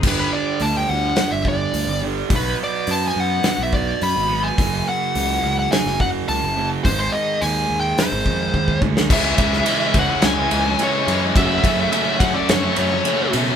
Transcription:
0.03 picked electric bass G1, distorted electric guitar G2 D3 G3, kick, crash
0.08 lead electric guitar B4
0.20 lead electric guitar B4
0.33 lead electric guitar D5
0.60 picked electric bass D2, lead electric guitar A5, open hi-hat
0.77 lead electric guitar G5
0.89 picked electric bass D2, lead electric guitar F#5
1.16 snare, open hi-hat
1.31 picked electric bass G1, lead electric guitar E5
1.45 lead electric guitar D5, kick
1.74 picked electric bass D2, open hi-hat
1.87 picked electric bass G1
2.01 distorted electric guitar G2 D3 G3
2.29 picked electric bass B1, distorted electric guitar B2 F#3 B3, kick, open hi-hat
2.36 lead electric guitar B4
2.50 lead electric guitar B4
2.64 lead electric guitar D5
2.87 picked electric bass F#2, open hi-hat
2.91 lead electric guitar A5
3.08 lead electric guitar G#5
3.16 picked electric bass F#2, lead electric guitar F#5
3.43 snare, open hi-hat
3.58 picked electric bass B1
3.63 lead electric guitar E5
3.73 lead electric guitar D5, kick
4.02 picked electric bass F#2, lead electric guitar B5, open hi-hat
4.16 picked electric bass G#1
4.28 distorted electric guitar B2 F#3 B3
4.44 lead electric guitar G#5
4.58 picked electric bass F#1, distorted electric guitar F#2 C#3 F#3, kick, open hi-hat
4.89 lead electric guitar F#5
5.15 picked electric bass C#2, open hi-hat
5.43 picked electric bass C#2
5.59 lead electric guitar F#5
5.72 lead electric guitar G#5, snare, open hi-hat
5.86 picked electric bass F#1, snare
6.00 lead electric guitar F#5, kick
6.28 picked electric bass C#2, lead electric guitar A5, open hi-hat
6.44 picked electric bass F#1
6.57 distorted electric guitar F#2 C#3 F#3
6.84 picked electric bass G#1, distorted electric guitar G#2 D#3 G#3, lead electric guitar C5, kick, open hi-hat
6.99 lead electric guitar C5
7.12 lead electric guitar D#5
7.41 picked electric bass D#2, lead electric guitar G#5, open hi-hat
7.70 picked electric bass D#2
7.80 lead electric guitar G5
7.98 lead electric guitar C5, snare, open hi-hat
8.12 picked electric bass G#1
8.26 picked electric bass F2, kick
8.54 picked electric bass D#2, kick
8.68 kick
8.81 picked electric bass D2, distorted electric guitar G#2 D#3 G#3, kick
8.97 snare
9.10 picked electric bass C#2, distorted electric guitar C#3 E3 G#3 C#4, lead electric guitar E5, kick, crash
9.37 picked electric bass C#2, distorted electric guitar C#3 E3 G#3 C#4, kick, ride
9.52 distorted electric guitar E3 G#3 C#4, snare
9.66 distorted electric guitar C#3 E3 G#3 C#4, ride
9.80 distorted electric guitar E3 G#3 C#4
9.94 picked electric bass C#2, distorted electric guitar C#3 E3 G#3 C#4, kick, ride
9.99 lead electric guitar F#5
10.08 distorted electric guitar E3 G#3 C#4, muted distorted electric guitar stroke
10.22 picked electric bass C#2, lead electric guitar G#5, snare, ride
10.37 distorted electric guitar E3 G#3 C#4
10.50 picked electric bass C#2, distorted electric guitar C#3 E3 G#3 C#4, ride
10.64 distorted electric guitar E3 G#3 C#4, muted distorted electric guitar stroke
10.79 distorted electric guitar C#3 E3 G#3 C#4, ride
10.83 lead electric guitar C#5
11.06 picked electric bass F#2, distorted electric guitar C#3 E3 G#3 C#4, ride
11.21 distorted electric guitar E3 G#3 C#4
11.35 distorted electric guitar F#2 C#3 F#3 A3 C#4, picked electric bass F#2, lead electric guitar E5, kick, ride
11.64 picked electric bass F#2, distorted electric guitar C#3 F#3 A3 C#4, kick, ride
11.77 distorted electric guitar F#3 A3 C#4
11.91 distorted electric guitar F#2 C#3 F#3 A3 C#4, lead electric guitar E5, ride
12.07 distorted electric guitar F#3 A3 C#4
12.19 picked electric bass F#2, distorted electric guitar C#3 F#3 A3 C#4, lead electric guitar F#5, kick, ride
12.34 distorted electric guitar A3 C#4, lead electric guitar D5, muted distorted electric guitar stroke
12.39 distorted electric guitar F#3
12.49 picked electric bass F#2, lead electric guitar C#5, snare, ride
12.63 distorted electric guitar F#3 A3 C#4
12.76 picked electric bass F#2, distorted electric guitar C#3 F#3 A3, lead electric guitar C#5, ride
12.81 distorted electric guitar C#4
12.90 distorted electric guitar F#3 A3 C#4, muted distorted electric guitar stroke
13.04 distorted electric guitar F#2 C#3 F#3 A3 C#4, ride
13.32 picked electric bass B2, distorted electric guitar C#3 F#3 A3 C#4, ride
13.46 distorted electric guitar F#3 A3 C#4

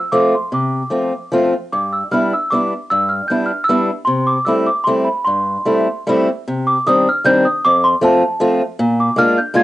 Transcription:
Already playing: celesta E6
0.12 steel-string acoustic guitar F3 A3 C4 F4, celesta D6
0.35 celesta C6
0.52 steel-string acoustic guitar C3, celesta D6
0.90 steel-string acoustic guitar F3 A3 C4 F4
1.32 steel-string acoustic guitar F3 A3 C4 F4
1.72 steel-string acoustic guitar G2, celesta D6
1.93 celesta E6
2.11 steel-string acoustic guitar G3 B3 D4 E4, celesta F6
2.33 celesta E6
2.50 steel-string acoustic guitar G3 B3 D4 E4, celesta D6
2.90 steel-string acoustic guitar G2, celesta E6
3.09 celesta F6
3.28 steel-string acoustic guitar G3 B3 D4 E4, celesta G6
3.46 celesta F6
3.64 celesta E6
3.69 steel-string acoustic guitar G3 B3 D4 E4
4.05 steel-string acoustic guitar C3, celesta C6
4.27 celesta D6
4.45 steel-string acoustic guitar G3 A3 C4 E4, celesta E6
4.66 celesta D6
4.84 steel-string acoustic guitar G3 A3 C4, celesta C6
4.88 steel-string acoustic guitar E4
5.05 celesta B5
5.25 steel-string acoustic guitar G2, celesta C6
5.65 steel-string acoustic guitar G3 A3 C4 E4
6.07 steel-string acoustic guitar G3 A3 C4 E4
6.48 steel-string acoustic guitar C3
6.67 celesta D6
6.87 steel-string acoustic guitar D#3 G3 C4 D4, celesta D#6
7.09 celesta F6
7.24 steel-string acoustic guitar D#3 G3 C4 D4, celesta G6
7.45 celesta D#6
7.65 steel-string acoustic guitar F2, celesta D6
7.84 celesta C6
8.01 steel-string acoustic guitar F3 A3 C4 F4, celesta A5
8.40 steel-string acoustic guitar F3 A3 C4 F4
8.79 steel-string acoustic guitar A#2
9.00 celesta D6
9.16 steel-string acoustic guitar G#3 A#3 D4 F4, celesta F6
9.38 celesta G6
9.54 steel-string acoustic guitar G#3 A#3 D4 F4, celesta G#6

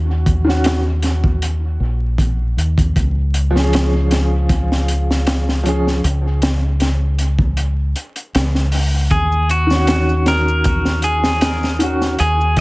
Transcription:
Already playing: fingered electric bass D#2
0.26 kick, closed hi-hat
0.45 upright piano D#3 C#4
0.49 upright piano F#4, snare
0.64 snare, closed hi-hat
1.02 snare, closed hi-hat
1.24 kick
1.42 closed hi-hat
1.80 fingered electric bass A#1
2.18 kick, closed hi-hat
2.57 fingered electric bass D#2, closed hi-hat
2.78 kick, closed hi-hat
2.96 fingered electric bass C#2, kick, closed hi-hat
3.34 closed hi-hat
3.50 upright piano F3
3.55 upright piano C#4, snare
3.59 upright piano G#4
3.73 snare, closed hi-hat
4.11 snare, closed hi-hat
4.49 kick, closed hi-hat
4.72 snare
4.88 closed hi-hat
5.11 snare
5.27 snare, closed hi-hat
5.49 snare
5.63 upright piano F3 C#4, closed hi-hat
5.68 upright piano G#4
5.87 snare
6.04 fingered electric bass C#2, closed hi-hat
6.42 snare, closed hi-hat
6.80 snare, closed hi-hat
7.19 closed hi-hat
7.39 kick
7.57 closed hi-hat
7.96 closed hi-hat
8.16 closed hi-hat
8.35 fingered electric bass C#2, snare, closed hi-hat
8.55 snare
8.72 open hi-hat
9.11 fingered electric bass D#2, clean electric guitar G#4, kick, closed hi-hat, maracas
9.32 maracas
9.49 clean electric guitar F#4, closed hi-hat, maracas
9.67 upright piano D#3, maracas
9.71 upright piano C#4, snare
9.76 upright piano F#4
9.87 snare, closed hi-hat, maracas
10.09 maracas
10.26 clean electric guitar A#4, snare, closed hi-hat, maracas
10.48 maracas
10.64 kick, closed hi-hat, maracas
10.85 snare, maracas
11.02 clean electric guitar G#4, closed hi-hat, maracas
11.24 snare, maracas
11.41 snare, closed hi-hat, maracas
11.63 snare, maracas
11.79 upright piano D#3 C#4, closed hi-hat, maracas
11.83 upright piano F#4
12.02 snare, maracas
12.19 fingered electric bass D#2, clean electric guitar G#4, closed hi-hat, maracas
12.41 maracas
12.57 kick, closed hi-hat

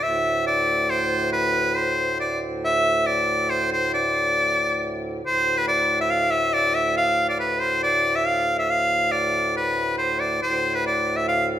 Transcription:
0.00 harmonium D2 A2, shawm E5
0.47 shawm D5
0.90 shawm C5
1.33 shawm B4
1.76 shawm C5
2.20 shawm D5
2.65 shawm E5
3.07 shawm D5
3.50 shawm C5
3.72 shawm C5
3.94 shawm D5
5.23 harmonium D2 A2, shawm C5
5.57 shawm B4
5.68 shawm D5
6.01 shawm E5
6.10 shawm F5
6.30 shawm E5
6.54 shawm D5
6.75 shawm E5
6.97 shawm F5
7.29 shawm D5
7.39 shawm B4
7.60 shawm C5
7.83 shawm D5
8.16 shawm E5
8.26 shawm F5
8.58 shawm E5
8.70 shawm F5
9.11 shawm D5
9.57 shawm B4
9.98 shawm C5
10.20 shawm D5
10.42 harmonium D2 A2, shawm C5
10.74 shawm B4
10.87 shawm D5
11.17 shawm E5
11.28 shawm F5

